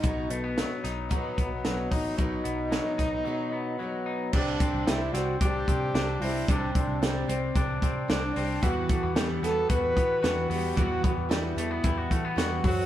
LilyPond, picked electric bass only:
\new Staff \with { instrumentName = "Picked electric bass" } { \clef bass \time 4/4 \key e \minor \tempo 4 = 112 b,,8 b,,8. r16 b,,8. r16 b,,8 b,,8 a,,8 | b,,8 b,,8. r16 b,,8 r2 | c,8 r16 c,16 c,8 c,8 c,8 c8 c,8 c,8 | c,8 r16 c,16 c,8 c,8 c,8 c8 c,8 c,8 |
e,8 r16 e,16 e,8 e,8 e,8 e8 e,8 e,8 | e,8 r16 e,16 e,8 e,8 e,8 e8 e,8 fis,8 | }